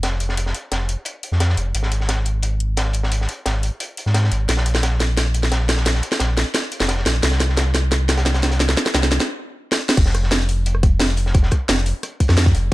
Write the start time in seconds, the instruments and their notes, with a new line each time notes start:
Already playing: sub bass F1
0.03 snare, closed hi-hat
0.20 closed hi-hat
0.29 snare
0.37 closed hi-hat
0.46 snare
0.55 closed hi-hat
0.72 sub bass F1, snare, closed hi-hat
0.89 closed hi-hat
1.05 closed hi-hat
1.23 closed hi-hat
1.32 sub bass F2, snare
1.40 snare, closed hi-hat
1.49 snare
1.57 sub bass F1, closed hi-hat
1.74 sub bass G#1, closed hi-hat
1.83 snare
1.92 closed hi-hat
2.00 snare
2.09 snare, closed hi-hat
2.25 closed hi-hat
2.43 closed hi-hat
2.60 closed hi-hat
2.77 snare, closed hi-hat
2.93 closed hi-hat
3.03 snare
3.12 closed hi-hat
3.21 snare
3.29 closed hi-hat
3.46 sub bass G#1, snare, closed hi-hat
3.63 closed hi-hat
3.80 closed hi-hat
3.97 closed hi-hat
4.06 sub bass G#2, snare
4.14 snare, closed hi-hat
4.24 snare
4.31 sub bass G#1, closed hi-hat
4.49 sub bass A#1, snare, closed hi-hat
4.57 snare
4.66 closed hi-hat
4.75 snare
4.83 snare, closed hi-hat
5.00 snare, closed hi-hat
5.17 snare, closed hi-hat
5.34 closed hi-hat
5.43 snare
5.52 snare, closed hi-hat
5.69 snare, closed hi-hat
5.77 snare
5.86 snare, closed hi-hat
5.95 snare
6.03 closed hi-hat
6.12 snare
6.20 sub bass A#1, snare, closed hi-hat
6.37 snare, closed hi-hat
6.54 snare, closed hi-hat
6.72 closed hi-hat
6.80 sub bass F1, snare
6.88 snare, closed hi-hat
6.97 snare
7.06 sub bass A#1, snare, closed hi-hat
7.23 sub bass C2, snare, closed hi-hat
7.32 snare
7.40 snare, closed hi-hat
7.49 snare
7.57 snare, closed hi-hat
7.75 snare, closed hi-hat
7.92 snare, closed hi-hat
8.08 snare, closed hi-hat
8.17 snare, closed hi-hat
8.25 snare, closed hi-hat
8.34 snare, closed hi-hat
8.43 snare, closed hi-hat
8.51 snare, closed hi-hat
8.60 snare, closed hi-hat
8.69 snare
8.77 snare, closed hi-hat
8.86 snare
8.94 sub bass C2, snare, closed hi-hat
9.03 snare
9.11 snare, closed hi-hat
9.20 snare
9.72 snare
9.89 snare
9.97 sub bass F1, kick, closed hi-hat, crash
10.06 snare
10.15 cross-stick, closed hi-hat
10.23 snare
10.31 snare, closed hi-hat
10.49 closed hi-hat, open hi-hat
10.66 closed hi-hat
10.75 cross-stick
10.83 kick, closed hi-hat
10.99 snare, closed hi-hat
11.17 closed hi-hat, open hi-hat
11.26 snare
11.34 kick, closed hi-hat
11.43 snare
11.51 kick, cross-stick, closed hi-hat
11.69 sub bass F1, snare, closed hi-hat
11.86 closed hi-hat, open hi-hat
12.03 cross-stick, closed hi-hat
12.20 kick, closed hi-hat
12.29 sub bass F2, cross-stick, snare
12.37 snare, closed hi-hat
12.46 kick, snare
12.55 sub bass F1, closed hi-hat, open hi-hat